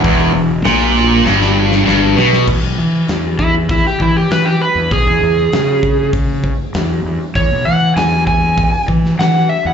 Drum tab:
CC |----------------|x---------------|----------------|----------------|
HH |o---o-----------|----o---o---o---|o---o---o---o---|o---o---o---o---|
SD |----o---oo-oo-oo|----o-------o---|----o-------o---|----o------oo---|
BD |o---------------|o-----o-o-o-----|o-----o-o-o-----|o-----o-o-o-----|